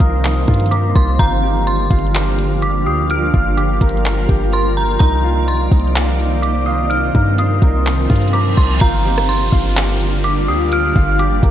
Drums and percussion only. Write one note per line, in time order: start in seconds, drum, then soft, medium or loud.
0.00 kick loud
0.00 closed hi-hat medium
0.24 clap loud
0.24 closed hi-hat medium
0.48 kick loud
0.48 closed hi-hat medium
0.54 closed hi-hat medium
0.60 closed hi-hat medium
0.66 closed hi-hat medium
0.72 closed hi-hat medium
0.96 kick medium
1.19 kick loud
1.19 closed hi-hat medium
1.67 closed hi-hat medium
1.91 kick loud
1.91 closed hi-hat medium
1.99 closed hi-hat medium
2.07 closed hi-hat soft
2.15 clap loud
2.15 closed hi-hat medium
2.39 closed hi-hat medium
2.62 closed hi-hat medium
3.10 closed hi-hat medium
3.34 kick medium
3.57 closed hi-hat medium
3.81 kick medium
3.81 closed hi-hat medium
3.89 closed hi-hat medium
3.97 closed hi-hat soft
4.05 clap loud
4.05 closed hi-hat medium
4.29 kick loud
4.29 closed hi-hat medium
4.53 closed hi-hat medium
5.00 kick loud
5.00 closed hi-hat medium
5.48 closed hi-hat medium
5.72 kick loud
5.72 closed hi-hat medium
5.80 closed hi-hat medium
5.88 closed hi-hat soft
5.96 clap loud
5.96 closed hi-hat medium
6.20 closed hi-hat medium
6.43 closed hi-hat medium
6.91 closed hi-hat medium
7.15 kick medium
7.38 closed hi-hat medium
7.62 kick loud
7.62 closed hi-hat medium
7.86 clap loud
7.86 closed hi-hat medium
8.10 kick medium
8.10 closed hi-hat medium
8.16 closed hi-hat medium
8.22 closed hi-hat medium
8.28 closed hi-hat medium
8.34 closed hi-hat medium
8.58 kick medium
8.81 kick loud
8.81 closed hi-hat medium
9.18 cross-stick loud
9.29 closed hi-hat medium
9.53 kick loud
9.53 closed hi-hat medium
9.61 closed hi-hat medium
9.69 closed hi-hat soft
9.77 clap loud
9.77 closed hi-hat medium
10.01 closed hi-hat medium
10.24 closed hi-hat medium
10.72 closed hi-hat medium
10.96 kick medium
11.19 closed hi-hat medium
11.43 kick loud
11.43 closed hi-hat medium